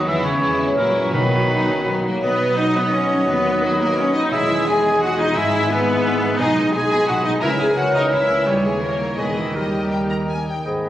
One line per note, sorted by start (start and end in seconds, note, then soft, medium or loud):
0.00 0.24 B4 medium
0.00 0.11 B5 medium
0.00 0.43 B5 medium
0.05 0.39 E2 medium
0.05 1.15 E3 medium
0.05 0.41 E3 medium
0.05 0.24 E3 medium
0.05 0.39 G#3 medium
0.05 0.38 G#3 medium
0.05 0.41 B3 medium
0.05 0.40 B3 medium
0.05 0.38 E4 medium
0.05 0.79 G#4 medium
0.05 0.16 E5 loud
0.16 0.50 E4 medium
0.24 0.77 C#3 medium
0.24 0.43 B4 medium
0.24 0.57 C#5 medium
0.33 0.68 G#4 medium
0.39 0.76 E2 medium
0.39 0.79 E3 medium
0.39 0.76 G#3 medium
0.39 0.59 C#4 medium
0.39 0.77 C#4 medium
0.39 0.75 E4 medium
0.39 1.15 C#6 medium
0.51 0.95 E4 medium
0.58 0.76 D#4 medium
0.58 1.03 C#5 medium
0.69 0.79 G#4 medium
0.76 1.13 F#2 medium
0.76 1.15 F#2 medium
0.76 1.13 A#2 medium
0.76 1.11 F#3 medium
0.76 1.12 F#3 medium
0.76 1.14 C#4 medium
0.76 1.13 E4 medium
0.76 2.05 F#4 medium
0.76 1.11 A#4 medium
0.87 1.21 F#3 soft
0.96 1.15 E4 medium
1.04 1.15 C#5 medium
1.12 2.03 B1 medium
1.12 2.21 B2 medium
1.12 1.65 B2 medium
1.12 2.05 B2 medium
1.12 2.05 D#3 medium
1.12 2.03 F#3 medium
1.12 1.48 B3 medium
1.12 2.04 D#4 medium
1.12 2.03 D#4 medium
1.12 2.04 B4 medium
1.12 2.05 B5 medium
1.23 2.02 F#3 soft
1.32 1.93 D#4 medium
1.40 1.84 B4 soft
1.49 1.68 D#4 medium
1.49 1.75 F#4 medium
1.59 2.66 D#5 medium
1.67 1.88 C#4 medium
1.67 2.74 B5 medium
1.76 2.57 F#4 soft
1.85 2.06 B3 medium
1.85 2.47 B4 medium
1.95 2.39 D#4 soft
2.04 2.30 F#3 soft
2.04 2.24 A#3 medium
2.13 3.19 B3 soft
2.21 3.25 B1 medium
2.21 3.24 B2 medium
2.21 3.30 B2 medium
2.21 4.28 F#3 medium
2.21 2.55 B3 medium
2.21 2.56 B3 medium
2.21 2.59 B4 medium
2.21 2.56 B4 medium
2.21 2.57 B4 medium
2.21 3.24 D#5 soft
2.21 4.29 D#5 medium
2.31 3.10 F#3 soft
2.48 2.92 B4 soft
2.57 2.76 D#4 medium
2.57 2.83 F#4 medium
2.57 2.77 D#5 medium
2.57 2.65 D#5 medium
2.57 2.77 D#5 medium
2.67 3.63 D#5 soft
2.76 2.94 B3 medium
2.76 2.92 B4 medium
2.76 2.83 B4 medium
2.76 2.94 B4 medium
2.76 3.71 B5 soft
2.84 3.54 F#4 soft
2.92 3.29 C#4 medium
2.92 3.45 B4 soft
2.92 3.27 C#5 medium
2.92 3.29 C#5 medium
3.02 3.36 D#4 soft
3.11 4.23 F#3 soft
3.20 6.40 B3 soft
3.27 4.31 D#2 medium
3.27 4.34 D#3 medium
3.27 3.63 B3 medium
3.27 3.65 B4 medium
3.27 3.62 B4 medium
3.27 4.28 B4 medium
3.27 3.64 B4 medium
3.37 4.15 D#4 soft
3.46 4.05 B4 soft
3.55 3.97 F#4 soft
3.62 3.80 F#3 medium
3.62 3.81 F#3 medium
3.62 3.81 F#4 medium
3.62 3.82 F#4 medium
3.62 3.81 F#4 medium
3.62 3.88 D#5 medium
3.72 4.75 B5 soft
3.80 3.88 A#3 medium
3.80 3.98 A#3 medium
3.80 3.98 A#4 medium
3.80 3.97 A#4 medium
3.80 3.98 A#4 medium
3.80 4.34 F#5 medium
3.89 4.65 D#5 soft
3.97 4.15 C#4 medium
3.97 4.16 C#4 medium
3.97 4.34 F#4 soft
3.97 4.13 C#5 medium
3.97 4.15 C#5 medium
4.07 4.48 B4 soft
4.14 4.22 D#4 medium
4.14 4.40 D#4 soft
4.14 4.33 D#4 medium
4.14 4.33 D#5 medium
4.14 4.22 D#5 medium
4.14 4.31 D#5 medium
4.24 4.34 F#3 soft
4.31 5.36 E1 medium
4.31 5.36 E2 medium
4.31 5.37 E3 medium
4.31 6.35 G#3 medium
4.31 4.66 E4 medium
4.31 4.67 E4 medium
4.31 6.35 G#4 medium
4.31 5.37 D#5 medium
4.31 4.66 E5 medium
4.41 5.16 D#4 soft
4.50 5.09 B4 medium
4.59 5.01 G#4 soft
4.65 5.01 G#4 medium
4.65 4.92 D#5 medium
4.65 5.00 G#5 medium
4.65 5.01 G#5 medium
4.65 5.02 G#5 medium
4.76 5.86 B5 soft
4.84 7.44 G#5 medium
4.93 5.37 D#5 soft
5.00 5.18 F#4 medium
5.00 5.19 F#4 medium
5.00 5.69 G#4 medium
5.00 5.16 F#5 medium
5.00 5.09 F#5 medium
5.00 5.19 F#5 medium
5.10 5.61 B4 soft
5.17 5.37 D#4 soft
5.17 5.35 D#4 medium
5.17 5.36 D#4 medium
5.17 5.35 D#5 medium
5.17 5.36 D#5 medium
5.17 5.39 D#5 medium
5.26 5.43 G#3 soft
5.33 6.39 G#1 medium
5.33 6.40 G#2 medium
5.33 6.39 G#2 medium
5.33 5.69 E4 medium
5.33 5.70 E4 medium
5.33 5.69 E5 medium
5.33 6.38 E5 medium
5.33 5.70 E5 medium
5.37 5.71 E5 medium
5.44 6.21 G#3 soft
5.53 6.12 E4 medium
5.62 6.03 B4 soft
5.69 6.37 B3 medium
5.69 5.95 G#4 medium
5.69 6.07 B4 medium
5.69 6.39 B4 medium
5.69 6.42 B4 medium
5.78 6.40 E5 medium
5.87 6.91 B5 medium
5.96 6.73 G#4 soft
6.04 6.66 B4 medium
6.13 6.40 E4 soft
6.23 6.48 G#3 soft
6.32 6.41 E3 soft
6.37 6.46 B1 medium
6.37 6.46 B2 medium
6.37 7.45 B2 medium
6.37 7.44 G#3 medium
6.37 6.74 D#4 medium
6.37 6.56 G#4 medium
6.37 6.74 D#5 medium
6.37 7.44 D#5 medium
6.37 6.74 D#5 medium
6.49 7.26 G#3 soft
6.55 6.64 B1 medium
6.55 6.64 B2 medium
6.55 6.62 D#4 soft
6.67 7.09 B4 soft
6.73 6.82 B1 soft
6.73 6.81 B2 soft
6.73 6.80 B3 medium
6.73 7.08 G#4 medium
6.73 6.99 G#4 medium
6.73 7.08 G#5 medium
6.73 7.10 G#5 medium
6.83 7.44 D#5 medium
6.89 6.98 B1 medium
6.89 6.98 B2 medium
6.89 7.06 G#4 medium
6.89 7.45 B5 medium
7.00 7.44 G#4 soft
7.06 7.16 B1 soft
7.06 7.15 B2 soft
7.06 7.14 D#4 soft
7.06 7.15 F#4 medium
7.06 7.25 F#4 medium
7.06 7.45 B4 medium
7.06 7.27 F#5 medium
7.06 7.14 F#5 medium
7.06 7.26 F#5 medium
7.18 7.30 B3 medium
7.18 7.45 D#4 soft
7.24 7.33 B1 soft
7.24 7.32 B2 soft
7.24 7.45 G#3 soft
7.24 7.42 D#4 medium
7.24 7.32 D#4 medium
7.24 7.41 D#5 medium
7.24 7.33 D#5 medium
7.24 7.44 D#5 medium
7.35 7.45 B3 soft
7.40 7.49 C#2 medium
7.40 7.50 C#2 medium
7.40 8.48 C#3 medium
7.40 9.02 E3 soft
7.40 7.59 E4 medium
7.40 7.49 E4 medium
7.40 7.57 A#4 medium
7.40 8.45 A#4 medium
7.40 7.50 E5 medium
7.40 7.61 E5 medium
7.44 7.60 E5 medium
7.52 7.68 C#4 soft
7.58 7.66 C#2 soft
7.58 7.67 C#2 soft
7.58 7.65 E4 soft
7.58 7.76 G#4 medium
7.58 7.77 G#4 medium
7.58 8.03 A#4 medium
7.58 7.76 G#5 medium
7.58 7.78 G#5 medium
7.58 7.77 G#5 medium
7.69 8.12 C#4 soft
7.75 7.84 C#2 soft
7.75 7.83 C#4 soft
7.75 7.93 F#4 medium
7.75 7.94 F#4 medium
7.75 7.94 C#5 medium
7.75 7.84 F#5 medium
7.75 7.96 F#5 medium
7.75 7.95 F#5 medium
7.86 9.20 A#5 soft
7.94 8.02 C#2 medium
7.94 8.12 D#4 medium
7.94 8.13 D#4 medium
7.94 8.10 A#4 medium
7.94 8.72 C#5 soft
7.94 8.13 D#5 medium
7.94 8.12 D#5 medium
7.94 8.02 D#5 medium
8.04 8.21 A#4 soft
8.11 8.19 C#2 soft
8.11 8.29 C#4 soft
8.11 8.19 E4 soft
8.11 8.46 E4 medium
8.11 8.47 E4 medium
8.11 8.47 E5 medium
8.11 8.49 E5 medium
8.11 8.46 E5 medium
8.22 9.20 A#4 soft
8.29 8.36 C#2 soft
8.29 8.37 C#2 soft
8.29 8.36 C#4 soft
8.29 9.20 C#4 soft
8.38 9.19 A#3 soft
8.45 9.14 D#2 soft
8.45 9.20 D#3 soft
8.45 8.64 G3 medium
8.45 8.66 G4 medium
8.45 8.64 G4 medium
8.45 8.65 G4 medium
8.45 9.21 C#5 soft
8.45 8.79 C#5 soft
8.56 9.20 G3 soft
8.64 8.82 G#3 medium
8.64 8.83 G#3 medium
8.64 9.56 E4 soft
8.64 8.83 G#4 medium
8.64 8.82 G#4 soft
8.73 9.20 C#5 soft
8.81 9.17 A#3 medium
8.81 9.17 A#3 soft
8.81 9.09 G4 soft
8.81 9.20 A#4 medium
8.81 9.17 A#4 soft
8.81 9.18 A#4 soft
8.81 9.17 C#5 soft
8.91 9.56 E5 soft
9.00 9.20 C#6 soft
9.10 9.20 G4 soft
9.17 9.55 E1 soft
9.17 9.55 E2 soft
9.17 10.45 D#3 soft
9.17 9.56 E3 soft
9.17 9.36 G#3 soft
9.17 9.29 G#3 soft
9.17 9.36 G#4 soft
9.17 9.38 G#4 soft
9.17 9.57 B4 soft
9.17 9.54 D#5 soft
9.28 9.63 D#4 soft
9.36 9.54 E3 soft
9.36 9.46 E3 soft
9.36 9.55 E4 soft
9.36 9.46 E4 soft
9.36 9.57 B4 soft
9.46 9.56 G#4 soft
9.53 10.48 D#2 soft
9.53 10.67 D#3 soft
9.53 10.30 G3 soft
9.53 10.28 G3 soft
9.53 10.29 G4 soft
9.53 10.30 G4 soft
9.53 10.28 G4 soft
9.53 10.48 A#4 soft
9.53 9.88 D#5 soft
9.64 10.47 D#4 soft
9.73 9.91 D#5 soft
9.83 10.29 A#4 soft
9.92 10.19 D#5 soft
9.92 9.99 G5 soft
10.02 10.89 D#6 soft
10.09 10.17 A#5 soft
10.09 10.67 A#5 soft
10.20 10.37 D#5 soft
10.28 10.67 A#4 soft
10.28 10.47 G#5 soft
10.39 10.89 D#5 soft
10.47 10.89 D#4 soft
10.47 10.65 G5 soft
10.56 10.67 A#3 soft
10.65 10.89 G#2 soft
10.65 10.89 G#4 medium
10.65 10.89 D#5 soft
10.65 10.89 B5 soft
10.83 10.89 B3 soft